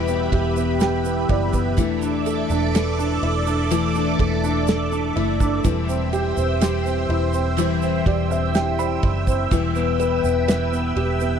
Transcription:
0.00 0.28 E1 medium
0.00 1.77 E2 medium
0.00 1.73 B2 medium
0.00 1.77 B2 medium
0.00 1.74 E3 medium
0.00 1.76 E3 medium
0.00 1.77 G3 medium
0.00 0.08 B3 medium
0.00 1.78 B3 loud
0.00 1.25 E4 medium
0.00 0.33 G4 medium
0.00 1.74 G4 medium
0.00 1.78 G4 loud
0.00 1.74 B4 medium
0.00 1.74 E5 medium
0.00 1.74 B5 medium
0.08 0.55 B3 medium
0.08 shaker soft
0.32 1.25 E1 loud
0.32 0.80 G4 medium
0.32 kick medium
0.32 ride medium
0.57 1.04 B3 soft
0.57 shaker soft
0.80 1.75 G4 medium
0.80 1.26 G5 medium
0.80 snare loud
0.80 ride medium
0.80 shaker medium
1.05 1.52 B3 medium
1.05 shaker soft
1.29 1.78 F#1 loud
1.29 1.76 E4 soft
1.29 1.75 D5 medium
1.29 kick medium
1.29 ride medium
1.53 1.77 B3 medium
1.53 kick medium
1.53 shaker soft
1.77 2.46 E1 loud
1.77 2.73 E3 medium
1.77 3.70 E3 medium
1.77 2.73 A3 medium
1.77 2.74 D4 loud
1.77 2.75 E4 loud
1.77 5.61 A4 medium
1.77 5.61 D5 medium
1.77 11.39 E5 medium
1.77 5.61 D6 medium
1.77 kick loud
1.77 ride medium
1.77 shaker medium
2.02 2.49 D4 soft
2.02 shaker soft
2.26 2.73 A4 medium
2.26 ride medium
2.26 shaker soft
2.50 3.19 E1 loud
2.50 2.97 D4 medium
2.50 shaker soft
2.73 3.70 E3 medium
2.73 3.70 A3 medium
2.73 3.71 D4 medium
2.73 3.72 E4 medium
2.73 4.18 A4 medium
2.73 snare loud
2.73 ride medium
2.73 shaker medium
2.99 3.45 D4 medium
2.99 shaker soft
3.23 4.15 E1 loud
3.23 5.12 E4 medium
3.23 ride medium
3.47 3.94 D4 soft
3.47 shaker soft
3.71 5.20 E3 loud
3.71 5.61 E3 medium
3.71 5.16 A3 medium
3.71 5.16 D4 medium
3.71 5.15 E4 medium
3.71 ride medium
3.71 shaker medium
3.95 4.42 D4 medium
3.95 shaker soft
4.19 5.12 E1 medium
4.19 4.67 A4 medium
4.19 kick medium
4.19 ride medium
4.44 4.91 D4 medium
4.44 shaker soft
4.67 5.62 A4 medium
4.67 snare loud
4.67 ride medium
4.67 shaker medium
4.92 5.39 D4 medium
4.92 shaker soft
5.16 5.61 F#1 medium
5.16 5.65 A3 soft
5.16 5.65 D4 medium
5.16 5.64 E4 medium
5.16 5.63 E4 medium
5.16 ride medium
5.40 5.64 D4 medium
5.40 kick medium
5.40 shaker medium
5.63 6.33 E1 loud
5.63 6.60 E3 medium
5.63 7.57 E3 medium
5.63 6.62 G3 medium
5.63 6.62 C4 medium
5.63 6.63 E4 loud
5.63 9.47 C5 medium
5.63 11.39 G5 medium
5.63 11.39 E6 medium
5.63 kick loud
5.63 ride medium
5.63 shaker medium
5.89 6.36 C4 soft
5.89 shaker medium
6.13 6.60 G4 medium
6.13 ride medium
6.13 shaker soft
6.37 7.06 E1 medium
6.37 6.84 C4 soft
6.37 shaker soft
6.61 7.56 E3 medium
6.61 7.58 G3 medium
6.61 7.59 C4 medium
6.61 7.61 E4 medium
6.61 8.05 G4 medium
6.61 snare loud
6.61 ride medium
6.61 shaker medium
6.86 7.33 C4 medium
6.86 shaker soft
7.09 8.02 E1 medium
7.09 8.99 E4 medium
7.09 ride medium
7.33 7.81 C4 medium
7.33 shaker soft
7.57 9.52 E3 medium
7.57 9.48 E3 medium
7.57 9.52 G3 loud
7.57 9.52 C4 medium
7.57 ride medium
7.57 shaker medium
7.61 9.53 E4 loud
7.82 8.29 C4 medium
7.82 shaker soft
8.06 8.99 E1 medium
8.06 8.54 G4 soft
8.06 8.29 D5 medium
8.06 kick medium
8.06 ride medium
8.31 8.77 C4 soft
8.31 8.53 E5 medium
8.31 shaker soft
8.55 9.49 G4 medium
8.55 8.77 G5 medium
8.55 snare medium
8.55 ride medium
8.55 shaker medium
8.79 9.26 C4 soft
8.79 9.48 B5 medium
8.79 shaker soft
9.03 9.48 F#1 medium
9.03 9.50 E4 soft
9.03 kick medium
9.03 ride medium
9.27 9.51 C4 soft
9.27 kick medium
9.27 shaker soft
9.51 10.20 E1 medium
9.51 10.48 E2 medium
9.51 10.48 B2 medium
9.51 11.39 E3 medium
9.51 10.48 E3 medium
9.51 10.48 G3 medium
9.51 10.49 B3 medium
9.51 10.50 E4 medium
9.51 11.39 B4 medium
9.51 kick loud
9.51 ride medium
9.51 shaker medium
9.76 10.23 B3 soft
9.76 shaker soft
9.99 10.47 B4 soft
9.99 ride medium
9.99 shaker soft
10.24 10.93 E1 medium
10.24 10.70 B3 medium
10.24 shaker soft
10.48 11.39 E3 medium
10.48 11.39 G3 medium
10.48 11.39 B3 medium
10.48 11.39 E4 medium
10.48 11.39 B4 medium
10.48 snare loud
10.48 ride medium
10.48 shaker medium
10.72 11.19 B3 medium
10.72 shaker soft
10.96 11.39 E1 loud
10.96 11.39 G4 medium
10.96 ride medium
11.20 11.39 B3 medium
11.20 shaker soft

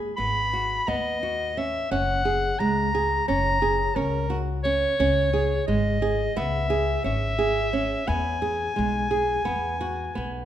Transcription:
0.00 0.13 G#4 medium
0.17 0.78 G#1 medium
0.17 0.47 B3 medium
0.17 0.90 B5 loud
0.53 0.83 F#4 medium
0.88 1.77 D#2 medium
0.88 1.17 B3 medium
0.88 1.60 D#5 medium
1.23 1.52 F#4 medium
1.57 1.86 C#4 medium
1.57 1.91 E5 medium
1.91 2.50 F#1 medium
1.91 2.21 C#4 medium
1.91 2.61 F#5 medium
2.25 2.55 G#4 medium
2.59 3.18 C#2 medium
2.59 2.89 G#3 medium
2.59 3.27 A#5 medium
2.95 3.23 G#4 medium
3.28 3.87 F#1 medium
3.28 3.57 C#4 medium
3.28 3.97 A#5 loud
3.62 3.91 G#4 medium
3.96 4.84 C#2 medium
3.96 4.25 C#4 medium
3.96 4.38 A#4 medium
4.30 4.59 F#4 medium
4.63 4.94 C#4 medium
4.63 5.63 C#5 medium
4.99 5.58 C#2 medium
4.99 5.29 C#4 medium
5.33 5.63 G#4 medium
5.67 6.27 G#1 medium
5.67 5.97 G#3 medium
5.67 6.39 D#5 medium
6.02 6.31 G#4 medium
6.36 6.95 C#2 medium
6.36 6.65 B3 medium
6.36 7.05 E5 medium
6.70 6.99 G#4 medium
7.04 7.94 G#1 medium
7.04 7.34 C#4 medium
7.04 8.09 E5 loud
7.39 7.68 G#4 medium
7.73 8.03 C#4 medium
8.08 8.68 E2 medium
8.08 8.37 B3 medium
8.08 10.45 G#5 medium
8.42 8.72 G#4 medium
8.76 9.37 B1 medium
8.76 9.06 G#3 medium
9.11 9.41 G#4 medium
9.45 10.07 E2 medium
9.45 9.75 B3 medium
9.81 10.11 F#4 medium
10.15 10.45 B1 medium
10.15 10.45 B3 medium

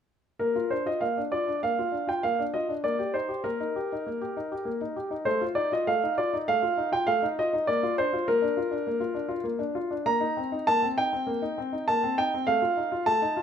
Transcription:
0.40 0.55 A#3 soft
0.40 0.71 A#4 medium
0.56 0.72 F4 soft
0.71 0.87 D4 soft
0.71 0.86 C5 medium
0.86 1.02 F4 soft
0.86 1.02 D#5 medium
1.01 1.16 A#3 soft
1.01 1.19 F5 medium
1.17 1.33 D4 soft
1.32 1.48 F4 soft
1.32 1.59 D5 medium
1.47 1.63 D4 soft
1.63 1.78 A#3 soft
1.63 2.08 F5 medium
1.79 1.94 F4 soft
1.92 2.08 D4 soft
2.07 2.24 F4 soft
2.07 2.24 G5 medium
2.23 2.38 A#3 soft
2.23 2.41 F5 medium
2.39 2.55 D4 soft
2.54 2.70 F4 soft
2.54 2.72 D#5 medium
2.69 2.84 D4 soft
2.84 2.99 A#3 soft
2.84 3.14 D5 medium
2.99 3.15 G4 soft
3.14 3.30 D#4 soft
3.14 3.45 C5 medium
3.29 3.45 G4 soft
3.44 3.60 A#3 soft
3.44 5.21 A#4 medium
3.60 3.76 D#4 soft
3.76 3.92 G4 soft
3.92 4.07 D#4 soft
4.06 4.21 A#3 soft
4.22 4.37 G4 soft
4.37 4.52 D#4 soft
4.52 4.67 G4 soft
4.65 4.80 A#3 soft
4.81 4.97 D#4 soft
4.96 5.12 G4 soft
5.11 5.26 D#4 soft
5.25 5.41 A3 soft
5.25 5.44 C5 medium
5.41 5.57 F4 soft
5.55 5.72 D#4 soft
5.55 5.71 D5 medium
5.72 5.88 F4 soft
5.72 5.87 D#5 medium
5.87 6.02 A3 soft
5.87 6.14 F5 medium
6.04 6.18 D#4 soft
6.18 6.33 F4 soft
6.18 6.36 D5 medium
6.33 6.48 D#4 soft
6.48 6.62 A3 soft
6.48 6.88 F5 medium
6.63 6.78 F4 soft
6.78 6.93 D#4 soft
6.92 7.08 F4 soft
6.92 7.07 G5 medium
7.07 7.22 A3 soft
7.07 7.25 F5 medium
7.22 7.38 D#4 soft
7.39 7.54 F4 soft
7.39 7.68 D#5 medium
7.53 7.68 D#4 soft
7.67 7.82 A#3 medium
7.67 7.94 D5 medium
7.83 7.98 F4 soft
7.98 8.14 D4 soft
7.98 8.27 C5 medium
8.13 8.28 F4 soft
8.28 8.42 A#3 soft
8.28 9.36 A#4 medium
8.42 8.57 D4 soft
8.57 8.72 F4 soft
8.71 8.86 D4 soft
8.87 9.00 A#3 soft
9.00 9.16 F4 soft
9.15 9.30 D4 soft
9.28 9.45 F4 soft
9.44 9.59 A#3 soft
9.59 9.76 D4 soft
9.75 9.92 F4 soft
9.91 10.07 D4 soft
10.06 10.22 A#3 medium
10.06 10.63 A#5 medium
10.20 10.38 D#4 soft
10.37 10.53 C4 soft
10.52 10.68 D#4 soft
10.67 10.82 A#3 soft
10.67 10.85 A5 medium
10.82 10.98 C4 soft
10.98 11.13 D#4 soft
10.98 11.83 G5 medium
11.13 11.28 C4 soft
11.27 11.41 A#3 soft
11.42 11.58 D#4 soft
11.58 11.73 C4 soft
11.73 11.88 D#4 soft
11.88 12.02 A#3 soft
11.88 12.17 A5 medium
12.03 12.19 C4 soft
12.18 12.34 D#4 soft
12.18 12.45 G5 medium
12.34 12.48 C4 soft
12.47 12.62 A3 soft
12.47 13.03 F5 medium
12.62 12.78 F4 soft
12.77 12.93 D#4 soft
12.92 13.08 F4 soft
13.06 13.21 A3 soft
13.06 13.43 A5 medium
13.22 13.38 D#4 soft
13.37 13.43 F4 soft

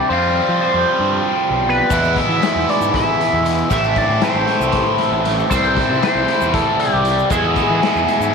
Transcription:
0.00 1.87 C5 medium
0.00 0.10 D5 loud
0.00 1.87 C6 medium
0.08 0.40 F2 medium
0.08 1.89 F3 medium
0.08 1.90 G3 medium
0.08 1.90 C4 medium
0.08 1.88 G4 medium
0.08 0.60 C5 loud
0.08 1.88 F5 medium
0.13 1.90 F4 medium
0.48 0.58 F3 medium
0.61 1.35 C5 medium
0.74 0.84 F2 medium
1.00 1.20 G2 medium
1.50 1.80 B1 medium
1.69 2.15 B4 medium
1.90 2.20 E2 loud
1.90 3.70 E2 medium
1.90 3.69 B2 medium
1.90 3.70 E3 medium
1.90 3.70 G#3 medium
1.90 3.71 B3 medium
1.90 3.72 E4 loud
1.90 3.70 G#4 medium
1.90 3.70 B4 medium
1.90 8.35 E5 medium
1.90 3.70 B5 medium
1.90 kick loud
1.90 closed hi-hat medium
1.90 shaker medium
2.04 shaker soft
2.16 2.71 E5 loud
2.16 kick medium
2.16 closed hi-hat medium
2.29 2.39 E3 medium
2.43 snare loud
2.43 closed hi-hat medium
2.43 shaker soft
2.56 2.65 E2 medium
2.69 2.94 D5 loud
2.69 closed hi-hat medium
2.81 3.00 G#2 medium
2.81 shaker medium
2.94 3.68 E5 loud
2.94 kick loud
2.94 closed hi-hat medium
3.21 closed hi-hat medium
3.33 3.62 E2 medium
3.45 closed hi-hat medium
3.45 shaker soft
3.58 shaker soft
3.69 4.00 A1 medium
3.69 5.49 A2 medium
3.69 5.51 E3 loud
3.69 5.50 A3 medium
3.69 5.50 C4 medium
3.69 5.53 E4 medium
3.69 7.28 G4 medium
3.69 7.28 C5 medium
3.69 3.99 E5 loud
3.69 5.50 A5 medium
3.69 kick loud
3.69 closed hi-hat medium
3.69 shaker medium
3.84 shaker soft
3.96 4.23 D5 medium
3.96 kick medium
3.96 closed hi-hat medium
4.09 4.19 A2 medium
4.21 5.22 C5 medium
4.21 snare loud
4.21 closed hi-hat medium
4.21 shaker soft
4.35 4.45 A1 medium
4.47 snare soft
4.47 closed hi-hat medium
4.60 4.80 C2 medium
4.60 shaker medium
4.72 kick medium
4.72 snare soft
4.72 closed hi-hat medium
4.98 snare soft
4.98 closed hi-hat medium
5.12 5.42 A1 medium
5.25 snare soft
5.25 closed hi-hat medium
5.39 shaker soft
5.50 5.80 C2 medium
5.50 7.30 C3 medium
5.50 7.32 E3 loud
5.50 7.30 G3 loud
5.50 7.30 C4 medium
5.50 7.33 E4 loud
5.50 5.98 C5 loud
5.50 7.30 C6 medium
5.50 kick loud
5.50 closed hi-hat medium
5.50 shaker medium
5.64 shaker soft
5.77 kick medium
5.77 snare soft
5.77 closed hi-hat medium
5.89 5.99 C3 medium
6.03 6.55 C5 loud
6.03 snare loud
6.03 closed hi-hat medium
6.03 shaker soft
6.15 6.25 C2 medium
6.28 closed hi-hat medium
6.41 6.61 E2 medium
6.41 shaker medium
6.54 6.79 A4 loud
6.54 kick loud
6.54 closed hi-hat medium
6.80 7.28 G4 medium
6.80 closed hi-hat medium
6.94 7.23 C2 medium
7.05 closed hi-hat medium
7.05 shaker soft
7.19 shaker soft
7.30 7.60 E2 medium
7.30 8.35 E2 medium
7.30 8.35 B2 medium
7.30 8.35 E3 medium
7.30 8.35 G#3 medium
7.30 8.35 B3 medium
7.30 8.35 E4 loud
7.30 8.35 G#4 medium
7.30 8.35 B4 medium
7.30 8.35 B5 medium
7.30 kick loud
7.30 closed hi-hat medium
7.30 shaker medium
7.56 kick medium
7.56 closed hi-hat medium
7.56 shaker soft
7.70 7.80 E3 medium
7.83 snare loud
7.83 closed hi-hat medium
7.96 8.05 E2 medium
7.96 shaker soft
8.08 closed hi-hat medium
8.08 shaker soft
8.20 8.35 G#2 medium
8.20 shaker medium

